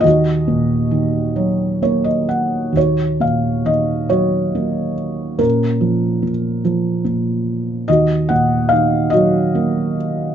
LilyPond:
<<
  \new Staff \with { instrumentName = "Felt piano" } { \time 6/8 \key ees \minor \tempo 4. = 47 << { ees''2 des''16 ees''16 ges''8 | des''8 f''8 ees''8 des''4. | bes'4 r2 | ees''8 ges''8 f''8 ees''4. | } \\ { ges'2 r4 | ges'4. ges'4. | des'4. r4. | ges'4. ges'4. | } >> }
  \new Staff \with { instrumentName = "Felt piano" } { \clef bass \time 6/8 \key ees \minor ees,8 bes,8 ees8 ges8 bes4 | ees,8 bes,8 ees8 ges8 bes4 | bes,8 f8 bes,8 f8 bes,4 | ees,8 bes,8 ees8 ges8 bes4 | }
>>